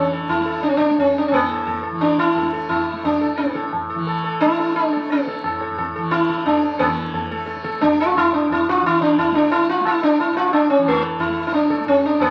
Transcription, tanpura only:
0.00 1.40 A2 medium
0.00 1.91 E3 medium
0.00 0.40 A3 medium
0.40 0.90 A3 medium
0.90 2.42 A3 medium
1.40 3.42 A2 medium
1.91 3.94 E3 medium
2.42 2.93 A3 medium
2.93 4.45 A3 medium
3.43 5.46 A2 medium
3.95 5.97 E3 medium
4.45 4.96 A3 medium
4.96 6.47 A3 medium
5.47 8.31 A2 medium
5.97 6.81 E3 medium
6.47 7.32 A3 medium
6.81 8.81 E3 medium
7.32 7.81 A3 medium
7.81 9.31 A3 medium
8.31 10.31 A2 medium
8.81 10.77 E3 medium
9.31 9.80 A3 medium
9.80 11.29 A3 medium
10.31 12.29 A2 medium
10.78 12.30 E3 medium
11.29 11.80 A3 medium
11.80 12.30 A3 medium

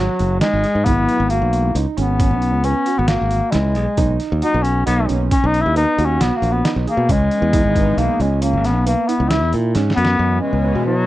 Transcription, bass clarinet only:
0.00 0.40 F#3 medium
0.40 0.86 G#3 loud
0.84 1.31 B3 loud
1.29 1.75 A#3 medium
2.00 2.66 B3 medium
2.64 2.99 C#4 loud
2.98 3.09 B3 medium
3.07 3.53 A#3 medium
3.51 4.19 G#3 medium
4.41 4.64 D#4 loud
4.63 4.85 C#4 medium
4.86 5.07 B3 medium
5.32 5.48 C#4 loud
5.46 5.63 D#4 loud
5.61 5.76 E4 loud
5.77 6.07 D#4 loud
6.05 6.23 C#4 loud
6.22 6.37 B3 medium
6.36 6.53 A#3 medium
6.52 6.73 B3 medium
6.89 7.13 A#3 medium
7.12 8.00 G#3 loud
7.98 8.22 A#3 medium
8.21 8.41 G#3 medium
8.42 8.67 A#3 medium
8.65 8.86 B3 medium
8.86 9.08 A#3 medium
9.07 9.30 B3 medium
9.29 9.52 E4 medium
9.96 10.38 B3 loud
10.41 10.83 G#3 medium
10.86 11.06 F#3 loud

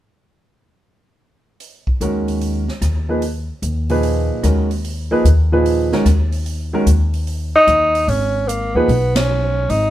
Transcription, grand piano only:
2.01 2.63 D#3 soft
2.01 2.63 G#3 soft
2.01 2.63 C#4 soft
2.01 2.64 F#4 soft
2.01 2.64 A#4 medium
3.09 3.21 F3 medium
3.09 3.21 A#3 soft
3.09 3.21 D#4 soft
3.09 3.21 G#4 soft
3.09 3.22 B4 medium
3.90 4.41 A#2 medium
3.90 4.41 F3 medium
3.90 4.42 D#4 medium
3.90 4.41 G#4 medium
3.90 4.42 B4 medium
4.43 4.68 D#3 soft
4.43 4.68 G#3 soft
4.43 4.68 C#4 soft
4.43 4.68 F#4 soft
4.43 4.68 A#4 soft
5.11 5.23 F3 medium
5.11 5.23 A#3 medium
5.11 5.24 D#4 medium
5.11 5.24 G#4 medium
5.11 5.24 B4 medium
5.52 5.90 A#2 medium
5.52 5.90 F3 medium
5.52 5.90 D#4 medium
5.52 5.90 G#4 medium
5.52 5.90 B4 medium
5.93 6.05 D#3 medium
5.93 6.05 G#3 medium
5.93 6.05 C#4 medium
5.93 6.05 F#4 medium
5.93 6.05 A#4 medium
6.73 6.85 D#3 medium
6.73 6.85 G#3 medium
6.73 6.86 C#4 medium
6.73 6.86 F#4 medium
6.73 6.86 A#4 medium
8.75 8.87 F3 medium
8.75 8.88 A#3 medium
8.75 8.88 D#4 medium
8.75 8.88 G#4 medium
8.75 8.88 B4 medium

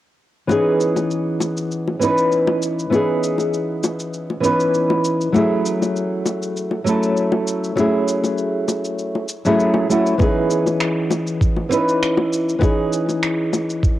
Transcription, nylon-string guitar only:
0.47 1.97 E3 medium
0.47 1.97 B3 medium
0.47 1.98 C#4 medium
0.47 1.98 D#4 medium
0.51 1.99 G#4 medium
1.99 2.88 E3 medium
1.99 2.89 B3 medium
1.99 2.89 C#4 medium
1.99 2.90 D#4 medium
2.03 2.90 B4 medium
2.90 4.39 E3 medium
2.90 4.40 B3 medium
2.90 4.41 C#4 medium
2.90 4.41 D#4 medium
2.95 4.42 G#4 medium
4.40 5.30 E3 medium
4.40 5.31 B3 medium
4.40 5.31 C#4 medium
4.40 5.32 D#4 medium
4.45 5.32 B4 medium
5.32 6.82 F#3 medium
5.32 6.82 A3 medium
5.32 6.83 C#4 medium
5.32 6.83 E4 medium
5.32 6.84 G#4 medium
6.84 7.73 F#3 medium
6.84 7.73 A3 medium
6.84 7.74 C#4 medium
6.84 7.75 E4 medium
6.89 7.75 A4 medium
7.75 9.25 F#3 medium
7.75 9.25 A3 medium
7.75 9.26 C#4 medium
7.75 9.26 E4 medium
7.80 9.27 G#4 medium
9.45 9.86 F#3 medium
9.45 9.86 A3 medium
9.45 9.86 C#4 medium
9.45 9.87 E4 medium
9.45 9.87 G#4 medium
9.89 10.16 F#3 medium
9.89 10.17 A3 medium
9.89 10.17 C#4 medium
9.89 10.17 E4 medium
9.89 10.17 F#4 medium
10.18 11.67 E3 medium
10.18 11.68 B3 medium
10.18 11.68 C#4 medium
10.18 11.68 D#4 medium
10.22 11.69 G#4 medium
11.69 12.58 E3 medium
11.69 11.72 B3 medium
11.69 12.59 C#4 medium
11.69 12.59 D#4 medium
11.73 12.60 B4 medium
12.59 13.99 E3 medium
12.59 12.62 B3 medium
12.59 13.99 C#4 medium
12.59 13.99 D#4 medium
12.63 13.99 G#4 medium

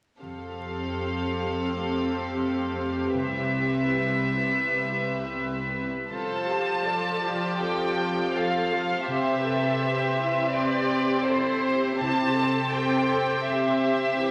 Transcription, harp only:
0.22 3.17 F3 soft
0.47 1.44 G4 soft
0.72 1.20 A4 soft
0.96 2.40 F4 soft
1.21 2.16 A4 soft
1.69 3.17 A3 soft
1.93 2.88 G4 soft
2.17 2.64 A4 soft
2.65 3.16 A4 soft
2.89 3.61 G4 soft
3.13 6.14 C3 soft
3.38 4.34 E4 soft
3.62 4.10 G4 soft
3.87 5.34 B3 soft
4.11 5.08 G4 soft
4.35 4.83 E4 soft
4.60 8.50 G3 soft
4.84 5.84 E4 soft
5.09 5.58 G4 soft
5.35 6.14 B3 soft
5.59 6.59 G4 soft
5.85 6.14 E4 soft
6.10 9.09 F3 soft
6.36 7.33 F4 soft
7.10 8.07 G4 soft
7.59 11.49 C4 soft
7.84 8.81 F4 soft
8.09 8.56 G4 soft
8.82 9.10 F4 soft
9.07 11.99 C3 soft
9.55 10.03 E4 soft
9.80 11.24 G4 soft
10.04 11.00 E4 soft
10.53 13.45 G3 soft
11.01 11.49 E4 soft
11.50 12.48 E4 soft
11.75 12.03 B3 soft
12.00 14.31 C3 soft
12.25 13.20 C4 soft
12.49 12.96 E4 soft
12.73 14.19 G4 soft
12.97 13.94 E4 soft
13.47 14.31 G3 soft

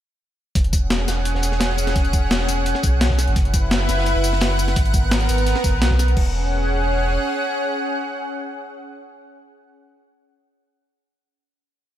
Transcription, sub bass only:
0.55 1.07 E1 loud
1.08 1.33 E1 medium
1.35 1.94 E1 medium
1.96 2.47 E1 loud
2.48 2.74 E1 medium
2.84 3.26 B1 medium
3.28 3.36 G#1 medium
3.36 3.87 F#1 loud
3.89 4.14 F#1 medium
4.15 4.75 F#1 medium
4.76 5.28 G#1 loud
5.29 5.54 G#1 medium
5.64 5.75 F#1 medium
5.73 6.16 B1 loud
6.17 7.18 E1 medium

